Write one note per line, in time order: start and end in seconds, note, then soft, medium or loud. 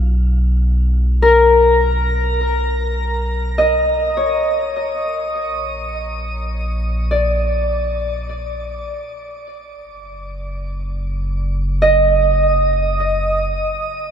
0.00 4.70 B1 medium
1.22 3.34 A#4 medium
3.58 5.36 D#5 medium
4.17 6.08 C#5 soft
4.74 9.40 A#1 medium
7.11 8.96 D5 soft
9.45 14.10 F#1 medium
11.82 13.60 D#5 medium